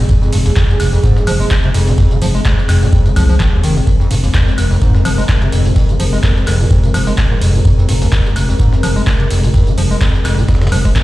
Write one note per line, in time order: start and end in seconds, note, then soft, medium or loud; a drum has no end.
0.00 11.03 F3 medium
0.00 11.03 G#3 medium
0.00 11.03 C4 medium
0.00 3.83 G#4 medium
0.09 0.13 F2 medium
0.09 kick loud
0.09 ride medium
0.09 tambourine medium
0.09 tambourine soft
0.22 0.31 F2 medium
0.22 tambourine soft
0.33 0.49 F1 loud
0.33 0.37 G2 loud
0.33 open hi-hat loud
0.33 ride medium
0.33 tambourine medium
0.46 0.52 D#2 medium
0.46 closed hi-hat soft
0.46 tambourine soft
0.56 0.71 F2 medium
0.56 kick loud
0.56 snare loud
0.56 clap loud
0.56 ride medium
0.56 tambourine medium
0.56 tambourine soft
0.69 0.75 D#2 medium
0.69 tambourine soft
0.80 0.96 F1 medium
0.80 0.87 F1 medium
0.80 open hi-hat loud
0.80 ride medium
0.80 tambourine medium
0.80 high woodblock medium
0.93 0.99 F2 medium
0.93 tambourine soft
1.03 1.18 G#2 loud
1.03 kick loud
1.03 ride medium
1.03 tambourine medium
1.03 tambourine soft
1.17 1.25 F2 medium
1.17 snare medium
1.17 tambourine soft
1.27 1.43 F1 medium
1.27 1.31 F3 loud
1.27 open hi-hat loud
1.27 ride medium
1.27 tambourine medium
1.27 high woodblock medium
1.40 1.46 G#3 medium
1.40 tambourine soft
1.51 1.55 F2 medium
1.51 kick loud
1.51 snare loud
1.51 clap loud
1.51 ride medium
1.51 tambourine medium
1.51 tambourine soft
1.64 1.70 C3 medium
1.64 closed hi-hat soft
1.74 1.90 F1 loud
1.74 1.89 F2 loud
1.74 open hi-hat loud
1.74 ride medium
1.74 tambourine medium
1.87 1.93 C3 medium
1.87 closed hi-hat soft
1.87 tambourine soft
1.98 2.13 F2 loud
1.98 kick loud
1.98 open hi-hat medium
1.98 ride medium
1.98 tambourine soft
2.11 2.17 D#3 medium
2.11 closed hi-hat soft
2.11 tambourine soft
2.22 2.38 F1 loud
2.22 2.26 F3 loud
2.22 open hi-hat loud
2.22 ride medium
2.22 tambourine medium
2.35 2.41 G#3 medium
2.35 tambourine soft
2.45 2.60 F2 medium
2.45 kick loud
2.45 snare loud
2.45 clap loud
2.45 ride medium
2.45 tambourine medium
2.45 tambourine soft
2.58 2.62 F1 medium
2.58 tambourine soft
2.69 2.85 F1 medium
2.69 2.83 F2 loud
2.69 snare soft
2.69 clap soft
2.69 open hi-hat loud
2.69 ride medium
2.69 tambourine medium
2.69 high woodblock medium
2.82 2.88 C3 medium
2.82 tambourine soft
2.93 3.07 F2 loud
2.93 kick loud
2.93 ride medium
2.93 tambourine medium
2.93 tambourine soft
3.06 3.11 D#3 medium
3.06 closed hi-hat soft
3.06 tambourine soft
3.16 3.32 C2 loud
3.16 3.23 F3 medium
3.16 open hi-hat loud
3.16 ride medium
3.16 tambourine medium
3.16 high woodblock medium
3.29 3.35 F3 medium
3.29 tambourine soft
3.40 3.47 D#3 medium
3.40 kick loud
3.40 snare loud
3.40 clap loud
3.40 ride medium
3.40 tambourine medium
3.40 tambourine soft
3.53 3.62 D#2 loud
3.63 3.79 F1 medium
3.63 3.78 D#3 medium
3.63 open hi-hat loud
3.63 ride medium
3.63 tambourine medium
3.77 3.80 F2 medium
3.77 tambourine soft
3.87 3.91 F2 medium
3.87 11.03 A#4 loud
3.87 kick loud
3.87 ride medium
3.87 tambourine medium
3.87 tambourine soft
4.00 4.09 F2 medium
4.00 tambourine soft
4.11 4.27 F1 loud
4.11 4.15 G2 loud
4.11 open hi-hat loud
4.11 ride medium
4.11 tambourine medium
4.24 4.30 D#2 medium
4.24 closed hi-hat soft
4.24 tambourine soft
4.34 4.49 F2 medium
4.34 kick loud
4.34 snare loud
4.34 clap loud
4.34 ride medium
4.34 tambourine medium
4.34 tambourine soft
4.47 4.53 D#2 medium
4.47 tambourine soft
4.58 4.74 F1 medium
4.58 4.65 F1 medium
4.58 open hi-hat loud
4.58 ride medium
4.58 tambourine medium
4.58 high woodblock medium
4.71 4.77 F2 medium
4.71 tambourine soft
4.81 4.96 G#2 loud
4.81 kick loud
4.81 ride medium
4.81 tambourine medium
4.81 tambourine soft
4.95 5.03 F2 medium
4.95 snare medium
4.95 tambourine soft
5.05 5.21 F1 medium
5.05 5.09 F3 loud
5.05 open hi-hat loud
5.05 ride medium
5.05 tambourine medium
5.05 high woodblock medium
5.18 5.24 G#3 medium
5.18 tambourine soft
5.29 5.33 F2 medium
5.29 kick loud
5.29 snare loud
5.29 clap loud
5.29 ride medium
5.29 tambourine medium
5.29 tambourine soft
5.42 5.48 C3 medium
5.42 closed hi-hat soft
5.52 5.68 F1 loud
5.52 5.67 F2 loud
5.52 open hi-hat loud
5.52 ride medium
5.52 tambourine medium
5.65 5.71 C3 medium
5.65 closed hi-hat soft
5.65 tambourine soft
5.76 5.91 F2 loud
5.76 kick loud
5.76 open hi-hat medium
5.76 ride medium
5.76 tambourine soft
5.89 5.95 D#3 medium
5.89 closed hi-hat soft
5.89 tambourine soft
6.00 6.16 F1 loud
6.00 6.04 F3 loud
6.00 open hi-hat loud
6.00 ride medium
6.00 tambourine medium
6.13 6.19 G#3 medium
6.13 tambourine soft
6.23 6.38 F2 medium
6.23 kick loud
6.23 snare loud
6.23 clap loud
6.23 ride medium
6.23 tambourine medium
6.23 tambourine soft
6.36 6.40 F1 medium
6.36 tambourine soft
6.47 6.63 F1 medium
6.47 6.61 F2 loud
6.47 snare soft
6.47 clap soft
6.47 open hi-hat loud
6.47 ride medium
6.47 tambourine medium
6.47 high woodblock medium
6.60 6.66 C3 medium
6.60 tambourine soft
6.70 6.85 F2 loud
6.70 kick loud
6.70 ride medium
6.70 tambourine medium
6.70 tambourine soft
6.83 6.89 D#3 medium
6.83 closed hi-hat soft
6.83 tambourine soft
6.94 7.10 F1 medium
6.94 6.98 F3 loud
6.94 open hi-hat loud
6.94 ride medium
6.94 tambourine medium
6.94 high woodblock medium
7.07 7.13 G#3 medium
7.07 closed hi-hat soft
7.07 tambourine soft
7.18 7.22 F2 medium
7.18 kick loud
7.18 snare loud
7.18 clap loud
7.18 ride medium
7.18 tambourine medium
7.18 tambourine soft
7.31 7.34 G#2 medium
7.41 7.57 F1 loud
7.41 7.56 F2 loud
7.41 open hi-hat loud
7.41 ride medium
7.41 tambourine medium
7.54 7.60 C3 medium
7.54 tambourine soft
7.65 7.69 F2 medium
7.65 kick loud
7.65 ride medium
7.65 tambourine medium
7.65 tambourine soft
7.78 7.87 F2 medium
7.78 tambourine soft
7.89 8.05 F1 loud
7.89 7.93 G2 loud
7.89 open hi-hat loud
7.89 ride medium
7.89 tambourine medium
8.02 8.07 D#2 medium
8.02 closed hi-hat soft
8.02 tambourine soft
8.12 8.27 F2 medium
8.12 kick loud
8.12 snare loud
8.12 clap loud
8.12 ride medium
8.12 tambourine medium
8.12 tambourine soft
8.25 8.31 D#2 medium
8.25 tambourine soft
8.36 8.43 F1 medium
8.36 8.52 F1 medium
8.36 open hi-hat loud
8.36 ride medium
8.36 tambourine medium
8.36 high woodblock medium
8.49 8.55 F2 medium
8.49 tambourine soft
8.59 8.74 G#2 loud
8.59 kick loud
8.59 ride medium
8.59 tambourine medium
8.59 tambourine soft
8.72 8.81 F2 medium
8.72 snare medium
8.72 tambourine soft
8.83 8.99 F1 medium
8.83 8.87 F3 loud
8.83 open hi-hat loud
8.83 ride medium
8.83 tambourine medium
8.83 high woodblock medium
8.96 9.02 G#3 medium
8.96 tambourine soft
9.07 9.11 F2 medium
9.07 kick loud
9.07 snare loud
9.07 clap loud
9.07 ride medium
9.07 tambourine medium
9.07 tambourine soft
9.20 9.26 C3 medium
9.20 closed hi-hat soft
9.30 9.46 F1 loud
9.30 9.45 F2 loud
9.30 open hi-hat loud
9.30 ride medium
9.30 tambourine medium
9.43 9.49 C3 medium
9.43 closed hi-hat soft
9.43 tambourine soft
9.54 9.69 F2 loud
9.54 kick loud
9.54 open hi-hat medium
9.54 ride medium
9.54 tambourine soft
9.67 9.73 D#3 medium
9.67 closed hi-hat soft
9.67 tambourine soft
9.78 9.94 F1 loud
9.78 9.82 F3 loud
9.78 open hi-hat loud
9.78 ride medium
9.78 tambourine medium
9.91 9.97 G#3 medium
9.91 tambourine soft
10.01 10.16 F2 medium
10.01 kick loud
10.01 snare loud
10.01 clap loud
10.01 ride medium
10.01 tambourine medium
10.15 10.18 F1 medium
10.15 tambourine soft
10.25 10.41 F1 medium
10.25 10.40 F2 loud
10.25 snare soft
10.25 clap soft
10.25 open hi-hat loud
10.25 ride medium
10.25 tambourine medium
10.25 high woodblock medium
10.38 10.44 C3 medium
10.38 tambourine soft
10.48 10.63 F2 loud
10.48 kick loud
10.48 snare medium
10.48 ride medium
10.48 tambourine medium
10.48 tambourine soft
10.55 snare medium
10.55 tambourine medium
10.62 10.67 D#3 medium
10.62 snare medium
10.62 tambourine medium
10.62 tambourine soft
10.67 snare medium
10.67 tambourine medium
10.72 10.88 F1 loud
10.72 10.76 F3 loud
10.72 open hi-hat loud
10.72 ride medium
10.72 tambourine medium
10.72 high woodblock medium
10.85 10.91 G#3 medium
10.85 kick medium
10.85 closed hi-hat soft
10.85 tambourine soft
10.96 11.00 F2 medium
10.96 kick loud
10.96 snare loud
10.96 clap loud
10.96 ride medium
10.96 tambourine medium